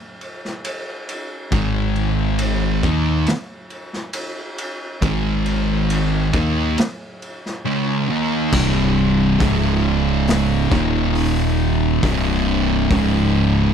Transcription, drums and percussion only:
0.21 ride medium
0.45 snare soft
0.64 ride medium
1.09 ride medium
1.52 kick loud
1.52 ride medium
1.96 ride medium
2.39 ride loud
2.83 kick loud
2.83 ride medium
3.26 snare loud
3.26 ride medium
3.70 ride medium
3.93 snare soft
4.13 ride loud
4.58 ride medium
5.02 kick loud
5.02 ride loud
5.46 ride medium
5.90 ride medium
6.33 kick loud
6.33 ride medium
6.78 snare loud
6.78 ride loud
7.22 ride medium
7.46 snare soft
8.53 kick loud
8.53 crash loud
9.40 kick loud
9.40 open hi-hat medium
10.27 snare loud
10.27 open hi-hat medium
10.72 kick loud
10.72 snare soft
11.15 open hi-hat medium
12.03 kick loud
12.03 open hi-hat medium
12.91 kick loud
12.91 open hi-hat medium

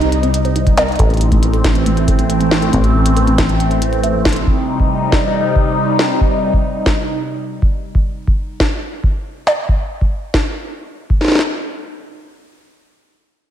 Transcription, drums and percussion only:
0.01 closed hi-hat soft
0.12 closed hi-hat medium
0.23 closed hi-hat soft
0.34 closed hi-hat loud
0.45 closed hi-hat soft
0.56 closed hi-hat medium
0.67 kick loud
0.67 closed hi-hat soft
0.77 snare loud
0.77 closed hi-hat medium
0.88 closed hi-hat soft
0.92 closed hi-hat soft
0.96 closed hi-hat soft
0.99 kick loud
0.99 closed hi-hat medium
1.10 closed hi-hat soft
1.14 closed hi-hat soft
1.17 closed hi-hat soft
1.21 closed hi-hat medium
1.32 kick loud
1.32 closed hi-hat soft
1.43 closed hi-hat medium
1.54 closed hi-hat soft
1.64 kick loud
1.64 snare loud
1.64 closed hi-hat medium
1.75 closed hi-hat soft
1.86 closed hi-hat medium
1.97 closed hi-hat soft
2.08 kick loud
2.08 closed hi-hat medium
2.19 closed hi-hat soft
2.30 closed hi-hat medium
2.41 closed hi-hat soft
2.51 snare loud
2.62 closed hi-hat soft
2.73 kick loud
2.73 closed hi-hat medium
2.84 closed hi-hat soft
3.06 closed hi-hat medium
3.17 closed hi-hat medium
3.27 closed hi-hat soft
3.38 kick loud
3.38 snare loud
3.38 closed hi-hat medium
3.49 closed hi-hat soft
3.60 closed hi-hat medium
3.71 closed hi-hat soft
3.82 closed hi-hat medium
3.93 closed hi-hat soft
4.04 closed hi-hat medium
4.25 kick loud
4.25 snare loud
4.25 closed hi-hat soft
4.29 closed hi-hat medium
4.33 closed hi-hat medium
4.36 closed hi-hat soft
4.47 kick loud
4.80 kick loud
5.12 kick loud
5.12 snare loud
5.56 kick loud
5.99 snare loud
6.21 kick loud
6.54 kick loud
6.86 kick loud
6.86 snare loud
7.62 kick loud
7.95 kick loud
8.28 kick loud
8.60 kick loud
8.60 snare loud
9.04 kick loud
9.47 snare loud
9.69 kick loud
10.01 kick medium
10.34 kick loud
10.34 snare loud
11.10 kick loud
11.21 snare soft
11.24 snare medium
11.28 snare medium
11.32 snare medium
11.35 snare medium
11.39 snare medium

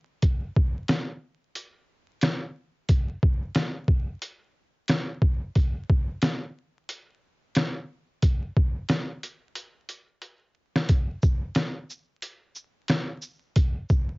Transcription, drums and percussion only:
0.22 kick loud
0.22 closed hi-hat medium
0.56 kick medium
0.88 snare loud
0.88 closed hi-hat medium
1.55 closed hi-hat medium
2.21 snare loud
2.21 closed hi-hat medium
2.89 kick loud
2.89 closed hi-hat medium
3.23 kick loud
3.55 snare loud
3.55 closed hi-hat medium
3.88 kick medium
4.22 closed hi-hat medium
4.88 snare loud
4.88 closed hi-hat medium
5.22 kick medium
5.56 kick loud
5.56 closed hi-hat medium
5.90 kick medium
6.22 snare loud
6.22 closed hi-hat medium
6.89 closed hi-hat medium
7.55 snare loud
7.55 closed hi-hat medium
8.22 kick loud
8.22 closed hi-hat medium
8.56 kick medium
8.89 snare loud
8.89 closed hi-hat medium
9.23 closed hi-hat medium
9.55 closed hi-hat medium
9.89 closed hi-hat medium
10.22 closed hi-hat medium
10.76 snare medium
10.89 kick loud
10.89 closed hi-hat medium
11.22 kick medium
11.22 shaker medium
11.55 snare loud
11.55 closed hi-hat medium
11.90 shaker medium
12.22 closed hi-hat medium
12.55 shaker medium
12.88 snare loud
12.88 closed hi-hat medium
13.22 shaker medium
13.56 kick loud
13.56 closed hi-hat medium
13.89 kick loud
13.89 shaker medium

